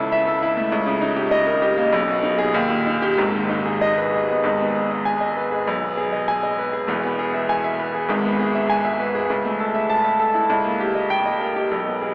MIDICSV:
0, 0, Header, 1, 2, 480
1, 0, Start_track
1, 0, Key_signature, 5, "minor"
1, 0, Tempo, 607287
1, 567, Time_signature, 2, 2, 24, 8
1, 2014, Tempo, 635593
1, 3454, Tempo, 605449
1, 9549, End_track
2, 0, Start_track
2, 0, Title_t, "Grand piano"
2, 0, Program_c, 0, 0
2, 0, Control_c, 0, 64, 127
2, 0, Note_on_c, 0, 37, 99
2, 0, Note_on_c, 0, 49, 92
2, 0, Note_on_c, 0, 64, 90
2, 0, Note_on_c, 0, 69, 91
2, 96, Note_on_c, 0, 76, 122
2, 165, Note_off_c, 0, 69, 0
2, 215, Note_on_c, 0, 69, 96
2, 285, Note_off_c, 0, 76, 0
2, 335, Note_off_c, 0, 64, 0
2, 335, Note_on_c, 0, 64, 96
2, 403, Note_off_c, 0, 69, 0
2, 450, Note_on_c, 0, 57, 88
2, 522, Note_off_c, 0, 64, 0
2, 541, Note_off_c, 0, 37, 0
2, 568, Note_off_c, 0, 57, 0
2, 568, Note_on_c, 0, 37, 109
2, 578, Control_c, 0, 64, 0
2, 584, Note_off_c, 0, 49, 0
2, 682, Note_on_c, 0, 49, 98
2, 715, Control_c, 0, 64, 127
2, 800, Note_on_c, 0, 63, 92
2, 876, Note_off_c, 0, 49, 0
2, 920, Note_on_c, 0, 67, 91
2, 996, Note_off_c, 0, 63, 0
2, 1037, Note_on_c, 0, 75, 127
2, 1117, Note_off_c, 0, 67, 0
2, 1161, Note_on_c, 0, 70, 95
2, 1235, Note_off_c, 0, 75, 0
2, 1280, Note_on_c, 0, 67, 90
2, 1357, Note_off_c, 0, 70, 0
2, 1403, Note_on_c, 0, 58, 98
2, 1476, Note_off_c, 0, 67, 0
2, 1500, Note_off_c, 0, 37, 0
2, 1521, Note_on_c, 0, 35, 111
2, 1525, Note_off_c, 0, 58, 0
2, 1543, Control_c, 0, 64, 0
2, 1643, Note_on_c, 0, 47, 95
2, 1676, Control_c, 0, 64, 127
2, 1760, Note_on_c, 0, 63, 90
2, 1840, Note_off_c, 0, 47, 0
2, 1885, Note_on_c, 0, 68, 109
2, 1960, Note_off_c, 0, 63, 0
2, 1996, Note_off_c, 0, 35, 0
2, 2008, Note_on_c, 0, 39, 117
2, 2011, Note_off_c, 0, 68, 0
2, 2029, Control_c, 0, 64, 0
2, 2129, Note_on_c, 0, 46, 84
2, 2157, Control_c, 0, 64, 127
2, 2253, Note_on_c, 0, 63, 80
2, 2322, Note_off_c, 0, 46, 0
2, 2371, Note_on_c, 0, 67, 110
2, 2445, Note_off_c, 0, 63, 0
2, 2476, Note_off_c, 0, 39, 0
2, 2489, Note_on_c, 0, 32, 98
2, 2493, Note_off_c, 0, 67, 0
2, 2495, Note_on_c, 0, 44, 102
2, 2509, Control_c, 0, 64, 0
2, 2615, Note_on_c, 0, 51, 76
2, 2643, Control_c, 0, 64, 127
2, 2730, Note_on_c, 0, 63, 80
2, 2807, Note_off_c, 0, 51, 0
2, 2850, Note_on_c, 0, 68, 84
2, 2925, Note_off_c, 0, 63, 0
2, 2970, Note_on_c, 0, 75, 127
2, 3045, Note_off_c, 0, 68, 0
2, 3091, Note_on_c, 0, 71, 85
2, 3166, Note_off_c, 0, 75, 0
2, 3213, Note_on_c, 0, 68, 80
2, 3287, Note_off_c, 0, 71, 0
2, 3332, Note_on_c, 0, 59, 75
2, 3405, Note_off_c, 0, 68, 0
2, 3422, Note_off_c, 0, 32, 0
2, 3425, Note_off_c, 0, 44, 0
2, 3441, Note_on_c, 0, 32, 93
2, 3450, Note_on_c, 0, 44, 94
2, 3451, Note_off_c, 0, 59, 0
2, 3466, Control_c, 0, 64, 0
2, 3568, Note_on_c, 0, 59, 72
2, 3587, Control_c, 0, 64, 127
2, 3688, Note_on_c, 0, 68, 75
2, 3764, Note_off_c, 0, 59, 0
2, 3808, Note_on_c, 0, 75, 76
2, 3885, Note_off_c, 0, 68, 0
2, 3929, Note_on_c, 0, 80, 113
2, 4005, Note_off_c, 0, 75, 0
2, 4050, Note_on_c, 0, 75, 80
2, 4126, Note_off_c, 0, 80, 0
2, 4174, Note_on_c, 0, 71, 79
2, 4247, Note_off_c, 0, 75, 0
2, 4299, Note_on_c, 0, 68, 76
2, 4368, Note_off_c, 0, 71, 0
2, 4383, Note_off_c, 0, 32, 0
2, 4388, Note_off_c, 0, 44, 0
2, 4419, Note_off_c, 0, 68, 0
2, 4420, Note_on_c, 0, 35, 98
2, 4435, Control_c, 0, 64, 0
2, 4541, Note_on_c, 0, 59, 76
2, 4570, Control_c, 0, 64, 127
2, 4658, Note_on_c, 0, 68, 83
2, 4734, Note_off_c, 0, 59, 0
2, 4779, Note_on_c, 0, 75, 83
2, 4853, Note_off_c, 0, 68, 0
2, 4901, Note_on_c, 0, 80, 122
2, 4975, Note_off_c, 0, 75, 0
2, 5021, Note_on_c, 0, 75, 84
2, 5096, Note_off_c, 0, 80, 0
2, 5144, Note_on_c, 0, 71, 82
2, 5217, Note_off_c, 0, 75, 0
2, 5258, Note_on_c, 0, 68, 83
2, 5337, Note_off_c, 0, 71, 0
2, 5357, Note_off_c, 0, 35, 0
2, 5369, Note_on_c, 0, 28, 85
2, 5378, Note_on_c, 0, 40, 98
2, 5382, Note_off_c, 0, 68, 0
2, 5401, Control_c, 0, 64, 0
2, 5499, Note_on_c, 0, 59, 88
2, 5540, Control_c, 0, 64, 127
2, 5622, Note_on_c, 0, 68, 87
2, 5692, Note_off_c, 0, 59, 0
2, 5741, Note_on_c, 0, 76, 80
2, 5813, Note_off_c, 0, 68, 0
2, 5862, Note_on_c, 0, 80, 120
2, 5933, Note_off_c, 0, 76, 0
2, 5980, Note_on_c, 0, 76, 87
2, 6053, Note_off_c, 0, 80, 0
2, 6100, Note_on_c, 0, 71, 82
2, 6173, Note_off_c, 0, 76, 0
2, 6222, Note_on_c, 0, 68, 83
2, 6292, Note_off_c, 0, 71, 0
2, 6303, Note_off_c, 0, 28, 0
2, 6308, Note_off_c, 0, 40, 0
2, 6333, Note_on_c, 0, 32, 96
2, 6341, Note_off_c, 0, 68, 0
2, 6341, Note_on_c, 0, 44, 112
2, 6353, Control_c, 0, 64, 0
2, 6462, Note_on_c, 0, 59, 90
2, 6478, Control_c, 0, 64, 127
2, 6576, Note_on_c, 0, 68, 89
2, 6651, Note_off_c, 0, 59, 0
2, 6699, Note_on_c, 0, 76, 86
2, 6768, Note_off_c, 0, 68, 0
2, 6816, Note_on_c, 0, 80, 127
2, 6889, Note_off_c, 0, 76, 0
2, 6936, Note_on_c, 0, 76, 90
2, 7008, Note_off_c, 0, 80, 0
2, 7053, Note_on_c, 0, 71, 91
2, 7127, Note_off_c, 0, 76, 0
2, 7176, Note_on_c, 0, 68, 89
2, 7246, Note_off_c, 0, 71, 0
2, 7263, Note_off_c, 0, 32, 0
2, 7267, Note_off_c, 0, 44, 0
2, 7295, Note_off_c, 0, 68, 0
2, 7296, Note_on_c, 0, 37, 99
2, 7310, Control_c, 0, 64, 0
2, 7413, Note_on_c, 0, 57, 81
2, 7457, Control_c, 0, 64, 127
2, 7532, Note_on_c, 0, 69, 86
2, 7603, Note_off_c, 0, 57, 0
2, 7647, Note_on_c, 0, 76, 85
2, 7721, Note_off_c, 0, 69, 0
2, 7767, Note_on_c, 0, 81, 124
2, 7838, Note_off_c, 0, 76, 0
2, 7882, Note_on_c, 0, 76, 84
2, 7958, Note_off_c, 0, 81, 0
2, 8006, Note_on_c, 0, 69, 89
2, 8075, Note_off_c, 0, 76, 0
2, 8121, Note_on_c, 0, 64, 84
2, 8198, Note_off_c, 0, 69, 0
2, 8218, Note_off_c, 0, 37, 0
2, 8244, Note_off_c, 0, 64, 0
2, 8244, Note_on_c, 0, 37, 108
2, 8262, Control_c, 0, 64, 0
2, 8363, Note_on_c, 0, 58, 81
2, 8370, Control_c, 0, 64, 127
2, 8486, Note_on_c, 0, 67, 83
2, 8557, Note_off_c, 0, 58, 0
2, 8603, Note_on_c, 0, 75, 78
2, 8679, Note_off_c, 0, 67, 0
2, 8724, Note_on_c, 0, 79, 114
2, 8797, Note_off_c, 0, 75, 0
2, 8845, Note_on_c, 0, 75, 83
2, 8917, Note_off_c, 0, 79, 0
2, 8967, Note_on_c, 0, 70, 82
2, 9038, Note_off_c, 0, 75, 0
2, 9089, Note_on_c, 0, 67, 80
2, 9159, Note_off_c, 0, 70, 0
2, 9176, Note_off_c, 0, 37, 0
2, 9207, Note_on_c, 0, 35, 86
2, 9208, Note_off_c, 0, 67, 0
2, 9221, Control_c, 0, 64, 0
2, 9327, Control_c, 0, 64, 127
2, 9329, Note_on_c, 0, 59, 72
2, 9447, Note_on_c, 0, 68, 73
2, 9523, Note_off_c, 0, 59, 0
2, 9549, Note_off_c, 0, 35, 0
2, 9549, Note_off_c, 0, 68, 0
2, 9549, End_track
0, 0, End_of_file